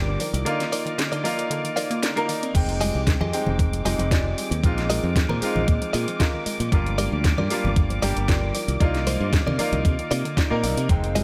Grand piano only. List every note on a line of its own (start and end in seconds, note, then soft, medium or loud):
0.00 0.18 G3 medium
0.00 0.18 A#3 medium
0.00 0.18 D4 medium
0.00 0.19 G4 medium
0.45 1.21 A#3 medium
0.45 1.22 D#4 medium
0.45 1.22 F4 loud
0.45 1.21 D5 medium
1.24 2.13 A#3 medium
1.24 2.14 D#4 medium
1.24 2.14 F4 loud
1.24 2.14 D5 medium
2.16 2.52 A#3 medium
2.16 2.52 D#4 medium
2.16 2.52 A#4 loud
2.54 3.30 G#3 medium
2.54 3.30 C4 medium
2.54 3.30 D#4 medium
2.54 3.31 G5 medium
3.33 3.82 G#3 medium
3.33 3.82 C4 medium
3.33 3.82 D#4 medium
3.33 3.83 G5 medium
3.85 4.60 G#3 medium
3.85 4.61 C4 medium
3.85 4.61 D#4 medium
4.63 5.39 G#3 medium
4.63 5.39 C4 medium
4.63 5.40 D#4 medium
4.63 5.40 F4 loud
5.41 6.69 G#3 medium
5.41 6.70 C4 medium
5.41 6.70 D#4 medium
5.41 6.70 F4 loud
6.72 7.47 G3 medium
6.72 7.48 A#3 medium
6.72 7.48 D4 medium
6.72 7.48 F4 medium
7.50 8.00 G3 medium
7.50 8.00 A#3 medium
7.50 8.00 D4 medium
7.50 8.00 F4 medium
8.02 8.53 G3 medium
8.02 8.53 A#3 medium
8.02 8.53 D4 medium
8.02 8.54 G4 loud
8.80 9.56 A#3 medium
8.80 9.57 D#4 medium
8.80 9.57 F4 loud
8.80 9.56 D5 medium
9.58 10.48 A#3 medium
9.58 10.49 D#4 medium
9.58 10.49 F4 loud
9.58 10.49 D5 medium
10.50 10.86 A#3 medium
10.50 10.87 D#4 medium
10.50 10.87 A#4 loud
10.50 10.87 D5 medium
10.89 11.24 G#3 medium
10.89 11.24 C4 medium
10.89 11.24 D#4 medium
10.89 11.24 G5 medium